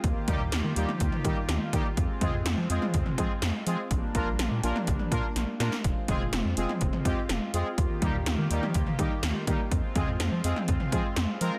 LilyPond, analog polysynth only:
\new Staff \with { instrumentName = "Analog polysynth" } { \time 4/4 \key f \dorian \tempo 4 = 124 r8 <g bes ees' g'>8 r8 <g bes ees' g'>8 r8 <g bes ees' g'>8 r8 <g bes ees' g'>8 | r8 <aes c' f' aes'>8 r8 <aes c' f' aes'>8 r8 <aes c' f' aes'>8 r8 <aes c' f' aes'>8 | r8 <bes d' f' bes'>8 r8 <bes d' f' bes'>8 r8 <bes d' f' bes'>8 r8 <bes d' f' bes'>8 | r8 <aes c' f' aes'>8 r8 <aes c' f' aes'>8 r8 <aes c' f' g'>8 r8 <aes c' f' aes'>8 |
r8 <g bes ees' g'>8 r8 <g bes ees' g'>8 r8 <g bes ees' g'>8 r8 <g bes ees' g'>8 | r8 <aes c' f' aes'>8 r8 <aes c' f' aes'>8 r8 <aes c' f' aes'>8 r8 <aes c' f' bes'>8 | }